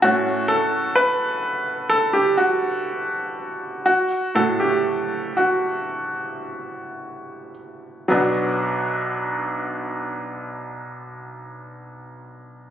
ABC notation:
X:1
M:4/4
L:1/16
Q:1/4=57
K:Bm
V:1 name="Grand piano"
F2 A2 B4 A G F4 z2 | F2 A G3 F8 z2 | [F,B,DF]16 |]
V:2 name="Grand piano"
[A,,A,C]2 z12 z2 | z2 [A,,A,F]6 z8 | B,,,16 |]